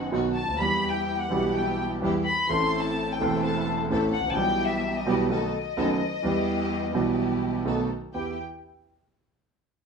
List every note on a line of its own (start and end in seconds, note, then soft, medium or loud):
0.00 0.10 F#4 medium
0.12 0.33 B1 medium
0.12 0.33 B2 medium
0.12 0.32 D#3 medium
0.12 0.32 F#3 medium
0.12 0.33 B3 medium
0.12 0.33 D#4 medium
0.12 0.33 F#4 medium
0.35 0.58 A5 medium
0.42 0.48 C#2 soft
0.48 0.54 D2 medium
0.54 0.60 D#2 medium
0.59 1.28 E2 medium
0.59 0.60 E3 medium
0.59 1.28 E3 medium
0.59 1.28 G3 medium
0.59 1.28 B3 medium
0.59 1.29 B3 medium
0.59 1.28 E4 medium
0.59 1.28 G4 medium
0.59 1.29 G4 medium
0.59 0.92 B5 medium
0.90 1.22 G5 medium
1.21 1.54 F#5 medium
1.29 1.99 B1 medium
1.29 1.99 B2 medium
1.29 1.98 E3 medium
1.29 1.98 G3 medium
1.29 1.99 B3 medium
1.29 1.99 E4 medium
1.29 1.99 G4 medium
1.29 2.00 G4 medium
1.54 1.78 G5 medium
2.02 2.23 E2 medium
2.02 2.22 E3 medium
2.02 2.22 G3 medium
2.02 2.22 B3 medium
2.02 2.23 B3 medium
2.02 2.23 E4 medium
2.02 2.22 G4 medium
2.02 2.23 G4 medium
2.26 2.48 B5 medium
2.47 3.17 A1 medium
2.47 3.17 A2 medium
2.47 3.16 E3 medium
2.47 3.17 A3 medium
2.47 3.17 C4 medium
2.47 3.17 E4 medium
2.47 3.17 A4 medium
2.47 2.81 C6 medium
2.51 3.18 A4 medium
2.81 3.12 A5 medium
3.14 3.44 G5 medium
3.19 3.88 E1 medium
3.19 3.88 E2 medium
3.19 3.86 E3 medium
3.19 3.87 A3 medium
3.19 3.87 C4 medium
3.19 3.88 C4 medium
3.19 3.87 E4 medium
3.19 3.88 A4 medium
3.23 3.88 A4 medium
3.45 3.66 A5 medium
3.90 4.10 A1 medium
3.90 4.10 A2 medium
3.90 4.10 E3 medium
3.90 4.10 A3 medium
3.90 4.10 C4 medium
3.90 4.11 C4 medium
3.90 4.11 E4 medium
3.90 4.11 A4 medium
4.13 4.29 F#5 loud
4.20 4.26 G#1 medium
4.26 4.32 A1 medium
4.31 4.37 A#1 medium
4.31 4.38 A5 medium
4.36 5.03 B1 medium
4.36 5.03 B2 medium
4.36 5.03 E3 medium
4.36 5.04 G3 medium
4.36 5.04 B3 medium
4.36 5.04 E4 medium
4.36 5.04 G4 medium
4.36 4.68 G5 loud
4.66 4.98 E5 medium
4.99 5.28 D#5 medium
5.06 5.27 B1 medium
5.06 5.27 B2 medium
5.06 5.27 E3 medium
5.06 5.27 G3 medium
5.06 5.27 B3 medium
5.06 5.27 E4 medium
5.06 5.27 G4 medium
5.29 5.50 B1 medium
5.29 5.50 B2 medium
5.29 5.50 D#3 medium
5.29 5.50 A3 medium
5.29 5.50 B3 medium
5.29 5.51 D#4 medium
5.29 5.50 F#4 medium
5.29 5.51 A4 medium
5.29 7.62 D#5 medium
5.77 5.97 F#1 medium
5.77 5.97 F#2 medium
5.77 5.97 D#3 medium
5.77 5.97 A3 medium
5.77 5.97 B3 medium
5.77 5.97 D#4 medium
5.77 5.97 F#4 medium
5.77 5.97 A4 medium
6.22 6.91 E2 medium
6.22 6.91 E3 medium
6.22 6.91 G3 medium
6.22 6.91 B3 medium
6.22 6.91 E4 medium
6.22 6.92 G4 medium
6.92 7.62 B1 medium
6.92 7.62 B2 medium
6.92 7.61 E3 medium
6.92 7.62 G3 medium
6.92 7.62 B3 medium
6.92 7.63 B3 medium
6.92 7.62 E4 medium
6.92 7.62 G4 medium
6.92 7.63 G4 medium
7.65 7.86 B1 medium
7.65 7.86 B2 medium
7.65 7.86 D#3 medium
7.65 7.86 A3 medium
7.65 7.86 B3 medium
7.65 7.86 D#4 medium
7.65 7.86 F#4 medium
7.65 7.87 A4 medium
8.14 8.34 E2 soft
8.14 8.34 B3 medium
8.14 8.34 B3 soft
8.14 8.34 E4 soft
8.14 8.34 G4 medium
8.14 8.36 G5 medium